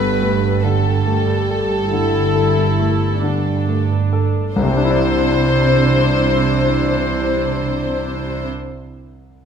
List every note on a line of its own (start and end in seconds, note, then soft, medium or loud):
0.00 4.29 G1 soft
0.00 1.88 G2 soft
0.00 3.27 G2 soft
0.00 4.29 G2 soft
0.00 2.23 A3 soft
0.00 0.61 B3 soft
0.00 2.55 B3 soft
0.00 3.91 G4 medium
0.00 0.30 A4 soft
0.00 0.47 A4 soft
0.00 0.61 A4 soft
0.00 0.63 B4 medium
0.00 0.66 B4 medium
0.00 0.93 A5 soft
0.22 0.89 A3 soft
0.31 1.58 A4 soft
0.62 1.32 D3 soft
0.62 1.87 G3 soft
0.62 3.91 A4 soft
0.62 3.91 A4 medium
0.62 1.25 B4 soft
0.94 3.55 A5 soft
1.06 1.74 A3 soft
1.27 3.22 B4 soft
1.50 2.18 A4 soft
1.60 2.89 A4 soft
1.91 4.62 D3 soft
1.91 2.62 D3 soft
1.91 3.21 E4 medium
2.24 4.62 A3 soft
2.35 3.06 A4 soft
2.56 4.62 B3 soft
2.79 3.51 A3 soft
2.90 4.24 A4 soft
3.23 3.96 D3 soft
3.23 4.57 D4 soft
3.23 3.90 B4 soft
3.57 4.62 A5 soft
3.67 4.40 A3 soft
3.91 4.62 B4 soft
4.13 4.57 A4 soft
4.25 4.63 A4 soft
4.56 8.46 C2 soft
4.56 8.48 C2 soft
4.56 8.48 C3 soft
4.56 8.48 C3 medium
4.56 8.48 E3 medium
4.56 8.48 D4 medium
4.56 8.49 D4 medium
4.56 8.48 E4 medium
4.56 8.47 C5 medium
4.56 8.48 C5 medium
4.56 8.49 C5 medium
4.63 8.53 C3 soft
4.63 8.54 G3 soft
4.70 8.60 G3 soft
4.70 8.61 C4 soft
4.77 8.67 D4 soft
4.77 8.68 D4 soft
4.84 8.74 E4 soft
4.84 8.75 E4 soft
4.91 8.81 D5 soft
4.91 8.83 D5 soft